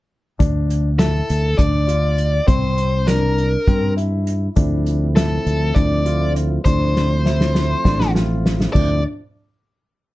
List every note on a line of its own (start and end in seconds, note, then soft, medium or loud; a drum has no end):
0.39 1.20 D2 medium
0.39 0.88 D4 medium
0.39 kick medium
0.39 closed hi-hat medium
0.70 closed hi-hat soft
0.99 1.48 E4 medium
0.99 1.60 A4 medium
0.99 snare medium
0.99 closed hi-hat medium
1.30 1.56 D2 medium
1.30 closed hi-hat medium
1.58 2.39 D2 medium
1.58 1.82 D4 medium
1.58 2.47 D5 medium
1.58 kick medium
1.58 closed hi-hat medium
1.87 2.36 F4 medium
1.87 closed hi-hat medium
2.18 closed hi-hat medium
2.47 3.55 C2 medium
2.47 2.95 C4 medium
2.47 3.09 C5 medium
2.47 kick medium
2.47 closed hi-hat medium
2.78 closed hi-hat soft
3.07 3.55 D4 medium
3.07 3.93 A#4 medium
3.07 snare medium
3.07 closed hi-hat medium
3.38 closed hi-hat soft
3.67 4.48 G2 medium
3.67 3.92 C4 medium
3.67 kick medium
3.67 closed hi-hat medium
3.97 4.45 E4 medium
3.97 closed hi-hat soft
4.27 closed hi-hat medium
4.56 5.38 D2 medium
4.56 6.62 F3 medium
4.56 6.62 A3 soft
4.56 6.62 C4 medium
4.56 5.05 D4 medium
4.56 6.62 E4 medium
4.56 kick medium
4.56 closed hi-hat medium
4.86 closed hi-hat soft
5.16 5.65 E4 medium
5.16 5.78 A4 medium
5.16 snare medium
5.16 closed hi-hat medium
5.46 5.73 D2 medium
5.46 closed hi-hat medium
5.75 6.57 D2 medium
5.75 6.00 D4 medium
5.75 6.31 D5 medium
5.75 kick medium
5.75 closed hi-hat medium
6.06 6.54 F4 medium
6.06 closed hi-hat medium
6.36 closed hi-hat medium
6.65 7.74 D2 medium
6.65 8.71 F3 soft
6.65 8.71 A3 soft
6.65 8.71 C4 soft
6.65 7.14 D4 medium
6.65 8.71 E4 medium
6.65 8.11 C5 medium
6.65 kick medium
6.65 closed hi-hat medium
6.96 snare soft
7.25 7.74 E4 medium
7.25 snare soft
7.41 snare soft
7.55 snare medium
7.84 8.66 A1 medium
7.84 8.09 D4 medium
7.84 kick medium
7.84 snare medium
8.00 snare medium
8.14 8.63 F4 medium
8.14 snare medium
8.46 snare medium
8.61 snare medium
8.73 9.03 D2 medium
8.73 9.02 F3 medium
8.73 9.02 A3 medium
8.73 9.03 C4 medium
8.73 9.02 D4 medium
8.73 9.02 E4 medium
8.73 9.02 D5 medium
8.73 kick medium
8.73 crash medium